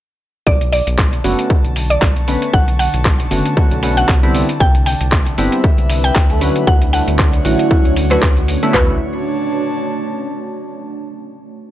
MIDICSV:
0, 0, Header, 1, 8, 480
1, 0, Start_track
1, 0, Key_signature, 2, "minor"
1, 0, Tempo, 517241
1, 433, Time_signature, 4, 2, 24, 8
1, 10867, End_track
2, 0, Start_track
2, 0, Title_t, "Synth pluck"
2, 0, Program_c, 0, 84
2, 433, Note_on_c, 0, 74, 96
2, 580, Note_off_c, 0, 74, 0
2, 673, Note_on_c, 0, 74, 92
2, 879, Note_off_c, 0, 74, 0
2, 1766, Note_on_c, 0, 74, 91
2, 2268, Note_off_c, 0, 74, 0
2, 2352, Note_on_c, 0, 78, 95
2, 2500, Note_off_c, 0, 78, 0
2, 2592, Note_on_c, 0, 78, 91
2, 2799, Note_off_c, 0, 78, 0
2, 3686, Note_on_c, 0, 78, 94
2, 4188, Note_off_c, 0, 78, 0
2, 4272, Note_on_c, 0, 79, 94
2, 4420, Note_off_c, 0, 79, 0
2, 4512, Note_on_c, 0, 79, 90
2, 4719, Note_off_c, 0, 79, 0
2, 5606, Note_on_c, 0, 79, 99
2, 6108, Note_off_c, 0, 79, 0
2, 6192, Note_on_c, 0, 78, 92
2, 6340, Note_off_c, 0, 78, 0
2, 6432, Note_on_c, 0, 78, 91
2, 6639, Note_off_c, 0, 78, 0
2, 7526, Note_on_c, 0, 71, 94
2, 8028, Note_off_c, 0, 71, 0
2, 8112, Note_on_c, 0, 71, 91
2, 8297, Note_off_c, 0, 71, 0
2, 10867, End_track
3, 0, Start_track
3, 0, Title_t, "Analog synth pad"
3, 0, Program_c, 1, 89
3, 433, Note_on_c, 1, 50, 77
3, 680, Note_on_c, 1, 81, 80
3, 1422, Note_on_c, 1, 85, 77
3, 4033, Note_off_c, 1, 85, 0
3, 4652, Note_on_c, 1, 76, 72
3, 4806, Note_off_c, 1, 81, 0
3, 4909, Note_on_c, 1, 71, 73
3, 6193, Note_on_c, 1, 78, 75
3, 6275, Note_on_c, 1, 73, 74
3, 6730, Note_off_c, 1, 71, 0
3, 6769, Note_off_c, 1, 76, 0
3, 8113, Note_off_c, 1, 50, 0
3, 8114, Note_off_c, 1, 73, 0
3, 8114, Note_off_c, 1, 78, 0
3, 8114, Note_on_c, 1, 62, 76
3, 8192, Note_on_c, 1, 73, 74
3, 8266, Note_on_c, 1, 81, 75
3, 9995, Note_off_c, 1, 73, 0
3, 9995, Note_off_c, 1, 81, 0
3, 9996, Note_off_c, 1, 62, 0
3, 10867, End_track
4, 0, Start_track
4, 0, Title_t, "Digital synth lead"
4, 0, Program_c, 2, 84
4, 5847, Note_on_c, 2, 69, 94
4, 5932, Note_off_c, 2, 69, 0
4, 5952, Note_on_c, 2, 66, 94
4, 6091, Note_off_c, 2, 66, 0
4, 6434, Note_on_c, 2, 69, 92
4, 6572, Note_off_c, 2, 69, 0
4, 6912, Note_on_c, 2, 64, 101
4, 7393, Note_off_c, 2, 64, 0
4, 10867, End_track
5, 0, Start_track
5, 0, Title_t, "Ambient pad"
5, 0, Program_c, 3, 92
5, 4272, Note_on_c, 3, 55, 82
5, 4272, Note_on_c, 3, 62, 75
5, 4272, Note_on_c, 3, 64, 75
5, 4272, Note_on_c, 3, 71, 89
5, 4273, Note_on_c, 3, 60, 75
5, 5936, Note_off_c, 3, 55, 0
5, 5936, Note_off_c, 3, 60, 0
5, 5936, Note_off_c, 3, 64, 0
5, 5936, Note_off_c, 3, 71, 0
5, 5953, Note_on_c, 3, 57, 88
5, 5953, Note_on_c, 3, 61, 82
5, 5953, Note_on_c, 3, 66, 82
5, 5953, Note_on_c, 3, 73, 93
5, 8076, Note_off_c, 3, 62, 0
5, 8091, Note_off_c, 3, 57, 0
5, 8091, Note_off_c, 3, 73, 0
5, 8092, Note_off_c, 3, 61, 0
5, 8092, Note_off_c, 3, 66, 0
5, 10867, End_track
6, 0, Start_track
6, 0, Title_t, "Synth keys"
6, 0, Program_c, 4, 88
6, 1153, Note_on_c, 4, 50, 87
6, 1154, Note_on_c, 4, 57, 81
6, 1154, Note_on_c, 4, 59, 83
6, 1154, Note_on_c, 4, 61, 83
6, 1154, Note_on_c, 4, 66, 100
6, 1377, Note_off_c, 4, 50, 0
6, 1377, Note_off_c, 4, 57, 0
6, 1377, Note_off_c, 4, 59, 0
6, 1377, Note_off_c, 4, 61, 0
6, 1377, Note_off_c, 4, 66, 0
6, 2113, Note_on_c, 4, 50, 70
6, 2113, Note_on_c, 4, 57, 64
6, 2114, Note_on_c, 4, 59, 65
6, 2114, Note_on_c, 4, 61, 64
6, 2114, Note_on_c, 4, 71, 79
6, 2336, Note_off_c, 4, 50, 0
6, 2336, Note_off_c, 4, 57, 0
6, 2337, Note_off_c, 4, 59, 0
6, 2337, Note_off_c, 4, 61, 0
6, 2337, Note_off_c, 4, 71, 0
6, 3073, Note_on_c, 4, 50, 70
6, 3073, Note_on_c, 4, 57, 64
6, 3073, Note_on_c, 4, 59, 64
6, 3073, Note_on_c, 4, 61, 64
6, 3073, Note_on_c, 4, 66, 77
6, 3288, Note_off_c, 4, 50, 0
6, 3288, Note_off_c, 4, 57, 0
6, 3288, Note_off_c, 4, 59, 0
6, 3288, Note_off_c, 4, 61, 0
6, 3288, Note_off_c, 4, 66, 0
6, 3313, Note_on_c, 4, 50, 75
6, 3313, Note_on_c, 4, 57, 68
6, 3313, Note_on_c, 4, 59, 68
6, 3313, Note_on_c, 4, 61, 69
6, 3313, Note_on_c, 4, 66, 83
6, 3528, Note_off_c, 4, 50, 0
6, 3528, Note_off_c, 4, 57, 0
6, 3528, Note_off_c, 4, 59, 0
6, 3528, Note_off_c, 4, 61, 0
6, 3528, Note_off_c, 4, 66, 0
6, 3553, Note_on_c, 4, 50, 81
6, 3553, Note_on_c, 4, 57, 76
6, 3553, Note_on_c, 4, 61, 75
6, 3553, Note_on_c, 4, 66, 88
6, 3554, Note_on_c, 4, 59, 78
6, 3895, Note_off_c, 4, 50, 0
6, 3895, Note_off_c, 4, 57, 0
6, 3895, Note_off_c, 4, 59, 0
6, 3895, Note_off_c, 4, 61, 0
6, 3895, Note_off_c, 4, 66, 0
6, 3926, Note_on_c, 4, 50, 95
6, 3927, Note_on_c, 4, 55, 89
6, 3927, Note_on_c, 4, 59, 90
6, 3927, Note_on_c, 4, 60, 88
6, 3927, Note_on_c, 4, 64, 105
6, 4145, Note_off_c, 4, 50, 0
6, 4146, Note_off_c, 4, 55, 0
6, 4146, Note_off_c, 4, 59, 0
6, 4146, Note_off_c, 4, 60, 0
6, 4146, Note_off_c, 4, 64, 0
6, 4993, Note_on_c, 4, 50, 90
6, 4993, Note_on_c, 4, 55, 83
6, 4993, Note_on_c, 4, 59, 86
6, 4993, Note_on_c, 4, 64, 101
6, 4994, Note_on_c, 4, 60, 83
6, 5216, Note_off_c, 4, 50, 0
6, 5216, Note_off_c, 4, 55, 0
6, 5216, Note_off_c, 4, 59, 0
6, 5217, Note_off_c, 4, 60, 0
6, 5217, Note_off_c, 4, 64, 0
6, 5952, Note_on_c, 4, 50, 72
6, 5952, Note_on_c, 4, 54, 67
6, 5952, Note_on_c, 4, 57, 68
6, 5952, Note_on_c, 4, 61, 68
6, 5953, Note_on_c, 4, 71, 83
6, 6176, Note_off_c, 4, 50, 0
6, 6176, Note_off_c, 4, 54, 0
6, 6176, Note_off_c, 4, 57, 0
6, 6176, Note_off_c, 4, 61, 0
6, 6176, Note_off_c, 4, 71, 0
6, 6913, Note_on_c, 4, 50, 74
6, 6913, Note_on_c, 4, 54, 64
6, 6913, Note_on_c, 4, 57, 67
6, 6913, Note_on_c, 4, 61, 65
6, 6913, Note_on_c, 4, 66, 79
6, 7128, Note_off_c, 4, 50, 0
6, 7128, Note_off_c, 4, 54, 0
6, 7128, Note_off_c, 4, 57, 0
6, 7128, Note_off_c, 4, 61, 0
6, 7128, Note_off_c, 4, 66, 0
6, 7153, Note_on_c, 4, 50, 77
6, 7153, Note_on_c, 4, 54, 69
6, 7153, Note_on_c, 4, 57, 68
6, 7153, Note_on_c, 4, 61, 72
6, 7154, Note_on_c, 4, 66, 84
6, 7368, Note_off_c, 4, 50, 0
6, 7368, Note_off_c, 4, 54, 0
6, 7368, Note_off_c, 4, 57, 0
6, 7368, Note_off_c, 4, 61, 0
6, 7368, Note_off_c, 4, 66, 0
6, 7527, Note_on_c, 4, 50, 102
6, 7527, Note_on_c, 4, 54, 90
6, 7527, Note_on_c, 4, 61, 92
6, 7528, Note_on_c, 4, 57, 91
6, 7528, Note_on_c, 4, 66, 108
6, 7653, Note_off_c, 4, 50, 0
6, 7653, Note_off_c, 4, 54, 0
6, 7654, Note_off_c, 4, 57, 0
6, 7654, Note_off_c, 4, 61, 0
6, 7654, Note_off_c, 4, 66, 0
6, 8008, Note_on_c, 4, 50, 98
6, 8008, Note_on_c, 4, 57, 90
6, 8008, Note_on_c, 4, 59, 87
6, 8008, Note_on_c, 4, 61, 87
6, 8008, Note_on_c, 4, 64, 104
6, 8101, Note_off_c, 4, 50, 0
6, 8102, Note_off_c, 4, 57, 0
6, 8102, Note_off_c, 4, 59, 0
6, 8102, Note_off_c, 4, 61, 0
6, 8112, Note_on_c, 4, 50, 84
6, 8113, Note_on_c, 4, 57, 75
6, 8297, Note_off_c, 4, 50, 0
6, 8297, Note_off_c, 4, 57, 0
6, 8353, Note_off_c, 4, 64, 0
6, 10867, End_track
7, 0, Start_track
7, 0, Title_t, "Analog synth bass"
7, 0, Program_c, 5, 38
7, 433, Note_on_c, 5, 35, 95
7, 756, Note_off_c, 5, 35, 0
7, 808, Note_on_c, 5, 35, 79
7, 1113, Note_off_c, 5, 35, 0
7, 1153, Note_on_c, 5, 30, 80
7, 1255, Note_off_c, 5, 30, 0
7, 1527, Note_on_c, 5, 35, 82
7, 1832, Note_off_c, 5, 35, 0
7, 1872, Note_on_c, 5, 35, 75
7, 2195, Note_off_c, 5, 35, 0
7, 2353, Note_on_c, 5, 35, 94
7, 2676, Note_off_c, 5, 35, 0
7, 2727, Note_on_c, 5, 35, 80
7, 3032, Note_off_c, 5, 35, 0
7, 3072, Note_on_c, 5, 30, 83
7, 3174, Note_off_c, 5, 30, 0
7, 3446, Note_on_c, 5, 35, 89
7, 3752, Note_off_c, 5, 35, 0
7, 3793, Note_on_c, 5, 36, 77
7, 4116, Note_off_c, 5, 36, 0
7, 4273, Note_on_c, 5, 36, 95
7, 4596, Note_off_c, 5, 36, 0
7, 4647, Note_on_c, 5, 36, 79
7, 4953, Note_off_c, 5, 36, 0
7, 4992, Note_on_c, 5, 31, 81
7, 5094, Note_off_c, 5, 31, 0
7, 5366, Note_on_c, 5, 36, 89
7, 5672, Note_off_c, 5, 36, 0
7, 5713, Note_on_c, 5, 38, 78
7, 6036, Note_off_c, 5, 38, 0
7, 6193, Note_on_c, 5, 38, 102
7, 6516, Note_off_c, 5, 38, 0
7, 6568, Note_on_c, 5, 38, 81
7, 6873, Note_off_c, 5, 38, 0
7, 6914, Note_on_c, 5, 33, 83
7, 7015, Note_off_c, 5, 33, 0
7, 7287, Note_on_c, 5, 38, 87
7, 7592, Note_off_c, 5, 38, 0
7, 7633, Note_on_c, 5, 38, 92
7, 7956, Note_off_c, 5, 38, 0
7, 8113, Note_on_c, 5, 35, 95
7, 8337, Note_off_c, 5, 35, 0
7, 10867, End_track
8, 0, Start_track
8, 0, Title_t, "Drums"
8, 433, Note_on_c, 9, 36, 116
8, 526, Note_off_c, 9, 36, 0
8, 568, Note_on_c, 9, 42, 52
8, 661, Note_off_c, 9, 42, 0
8, 674, Note_on_c, 9, 46, 99
8, 767, Note_off_c, 9, 46, 0
8, 808, Note_on_c, 9, 42, 65
8, 900, Note_off_c, 9, 42, 0
8, 913, Note_on_c, 9, 36, 109
8, 913, Note_on_c, 9, 39, 113
8, 1006, Note_off_c, 9, 36, 0
8, 1006, Note_off_c, 9, 39, 0
8, 1048, Note_on_c, 9, 42, 49
8, 1141, Note_off_c, 9, 42, 0
8, 1154, Note_on_c, 9, 46, 85
8, 1246, Note_off_c, 9, 46, 0
8, 1287, Note_on_c, 9, 42, 66
8, 1380, Note_off_c, 9, 42, 0
8, 1393, Note_on_c, 9, 36, 119
8, 1485, Note_off_c, 9, 36, 0
8, 1527, Note_on_c, 9, 42, 35
8, 1620, Note_off_c, 9, 42, 0
8, 1633, Note_on_c, 9, 46, 100
8, 1726, Note_off_c, 9, 46, 0
8, 1768, Note_on_c, 9, 42, 64
8, 1861, Note_off_c, 9, 42, 0
8, 1872, Note_on_c, 9, 39, 115
8, 1873, Note_on_c, 9, 36, 113
8, 1965, Note_off_c, 9, 36, 0
8, 1965, Note_off_c, 9, 39, 0
8, 2008, Note_on_c, 9, 42, 36
8, 2101, Note_off_c, 9, 42, 0
8, 2114, Note_on_c, 9, 46, 89
8, 2206, Note_off_c, 9, 46, 0
8, 2247, Note_on_c, 9, 42, 67
8, 2340, Note_off_c, 9, 42, 0
8, 2353, Note_on_c, 9, 36, 120
8, 2445, Note_off_c, 9, 36, 0
8, 2487, Note_on_c, 9, 42, 50
8, 2580, Note_off_c, 9, 42, 0
8, 2593, Note_on_c, 9, 46, 103
8, 2685, Note_off_c, 9, 46, 0
8, 2727, Note_on_c, 9, 42, 64
8, 2820, Note_off_c, 9, 42, 0
8, 2832, Note_on_c, 9, 39, 113
8, 2833, Note_on_c, 9, 36, 118
8, 2924, Note_off_c, 9, 39, 0
8, 2925, Note_off_c, 9, 36, 0
8, 2966, Note_on_c, 9, 42, 50
8, 3059, Note_off_c, 9, 42, 0
8, 3072, Note_on_c, 9, 46, 93
8, 3165, Note_off_c, 9, 46, 0
8, 3207, Note_on_c, 9, 42, 66
8, 3299, Note_off_c, 9, 42, 0
8, 3313, Note_on_c, 9, 36, 124
8, 3405, Note_off_c, 9, 36, 0
8, 3446, Note_on_c, 9, 42, 35
8, 3539, Note_off_c, 9, 42, 0
8, 3552, Note_on_c, 9, 46, 107
8, 3645, Note_off_c, 9, 46, 0
8, 3686, Note_on_c, 9, 42, 65
8, 3779, Note_off_c, 9, 42, 0
8, 3791, Note_on_c, 9, 39, 121
8, 3793, Note_on_c, 9, 36, 122
8, 3884, Note_off_c, 9, 39, 0
8, 3885, Note_off_c, 9, 36, 0
8, 3927, Note_on_c, 9, 42, 35
8, 4020, Note_off_c, 9, 42, 0
8, 4033, Note_on_c, 9, 46, 92
8, 4125, Note_off_c, 9, 46, 0
8, 4167, Note_on_c, 9, 42, 65
8, 4260, Note_off_c, 9, 42, 0
8, 4273, Note_on_c, 9, 36, 124
8, 4366, Note_off_c, 9, 36, 0
8, 4406, Note_on_c, 9, 42, 48
8, 4499, Note_off_c, 9, 42, 0
8, 4512, Note_on_c, 9, 46, 107
8, 4605, Note_off_c, 9, 46, 0
8, 4646, Note_on_c, 9, 42, 63
8, 4739, Note_off_c, 9, 42, 0
8, 4751, Note_on_c, 9, 39, 118
8, 4753, Note_on_c, 9, 36, 119
8, 4844, Note_off_c, 9, 39, 0
8, 4845, Note_off_c, 9, 36, 0
8, 4886, Note_on_c, 9, 42, 49
8, 4979, Note_off_c, 9, 42, 0
8, 4992, Note_on_c, 9, 46, 91
8, 5085, Note_off_c, 9, 46, 0
8, 5125, Note_on_c, 9, 42, 61
8, 5218, Note_off_c, 9, 42, 0
8, 5233, Note_on_c, 9, 36, 122
8, 5326, Note_off_c, 9, 36, 0
8, 5366, Note_on_c, 9, 42, 34
8, 5458, Note_off_c, 9, 42, 0
8, 5471, Note_on_c, 9, 46, 113
8, 5564, Note_off_c, 9, 46, 0
8, 5605, Note_on_c, 9, 42, 65
8, 5698, Note_off_c, 9, 42, 0
8, 5710, Note_on_c, 9, 39, 119
8, 5713, Note_on_c, 9, 36, 122
8, 5803, Note_off_c, 9, 39, 0
8, 5806, Note_off_c, 9, 36, 0
8, 5845, Note_on_c, 9, 42, 34
8, 5938, Note_off_c, 9, 42, 0
8, 5951, Note_on_c, 9, 46, 100
8, 6044, Note_off_c, 9, 46, 0
8, 6085, Note_on_c, 9, 42, 65
8, 6178, Note_off_c, 9, 42, 0
8, 6193, Note_on_c, 9, 36, 124
8, 6286, Note_off_c, 9, 36, 0
8, 6325, Note_on_c, 9, 42, 50
8, 6418, Note_off_c, 9, 42, 0
8, 6432, Note_on_c, 9, 46, 105
8, 6525, Note_off_c, 9, 46, 0
8, 6567, Note_on_c, 9, 42, 61
8, 6660, Note_off_c, 9, 42, 0
8, 6670, Note_on_c, 9, 39, 114
8, 6673, Note_on_c, 9, 36, 119
8, 6763, Note_off_c, 9, 39, 0
8, 6766, Note_off_c, 9, 36, 0
8, 6806, Note_on_c, 9, 42, 49
8, 6899, Note_off_c, 9, 42, 0
8, 6912, Note_on_c, 9, 46, 94
8, 7005, Note_off_c, 9, 46, 0
8, 7046, Note_on_c, 9, 42, 61
8, 7139, Note_off_c, 9, 42, 0
8, 7153, Note_on_c, 9, 36, 122
8, 7246, Note_off_c, 9, 36, 0
8, 7286, Note_on_c, 9, 42, 33
8, 7379, Note_off_c, 9, 42, 0
8, 7392, Note_on_c, 9, 46, 110
8, 7484, Note_off_c, 9, 46, 0
8, 7525, Note_on_c, 9, 39, 36
8, 7526, Note_on_c, 9, 42, 64
8, 7618, Note_off_c, 9, 39, 0
8, 7619, Note_off_c, 9, 42, 0
8, 7632, Note_on_c, 9, 39, 116
8, 7633, Note_on_c, 9, 36, 123
8, 7725, Note_off_c, 9, 39, 0
8, 7726, Note_off_c, 9, 36, 0
8, 7767, Note_on_c, 9, 42, 34
8, 7860, Note_off_c, 9, 42, 0
8, 7872, Note_on_c, 9, 46, 98
8, 7965, Note_off_c, 9, 46, 0
8, 8007, Note_on_c, 9, 42, 64
8, 8100, Note_off_c, 9, 42, 0
8, 8114, Note_on_c, 9, 36, 106
8, 8114, Note_on_c, 9, 39, 88
8, 8114, Note_on_c, 9, 43, 104
8, 8206, Note_off_c, 9, 36, 0
8, 8207, Note_off_c, 9, 39, 0
8, 8207, Note_off_c, 9, 43, 0
8, 10867, End_track
0, 0, End_of_file